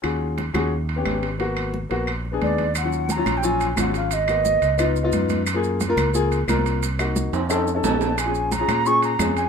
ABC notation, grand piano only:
X:1
M:4/4
L:1/16
Q:1/4=177
K:Ebm
V:1 name="Grand piano"
[DFGA]4 z2 [DFGA]2 z3 [CD=G]3 z2 | [B,CG]4 z2 [B,CG]2 z3 [C=DA]3 z2 | z [G,DF]3 z [G,DF]2 z [G,DF]3 z [G,DF]4 | z2 [B,CG]4 z2 [CEF]2 z [CEF]4 z |
z [B,FA]3 z [B,FB]2 z [B,FA]3 z [B,FB]4 | z2 [B,EG]4 z2 [^CE=A]2 z [CEA]4 z | z [DFA]3 z [DFA]2 z [DFA]3 z [DFA]4 |]